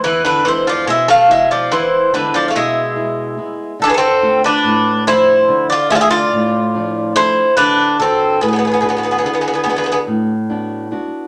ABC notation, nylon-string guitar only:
X:1
M:9/8
L:1/8
Q:3/8=48
K:none
V:1 name="Nylon-string guitar"
E,, [^G,B,E] B,, [G,E] E,, [G,B,E] B,, [G,B,E] [G,B,E] | D, [A,DF] A,, [F,A,D] D, [A,DF] A,, [F,A,D] [A,DA] | D, [D^FB] A,, [B,DF] D, [B,DF] A,, [B,DF] [B,DF] |]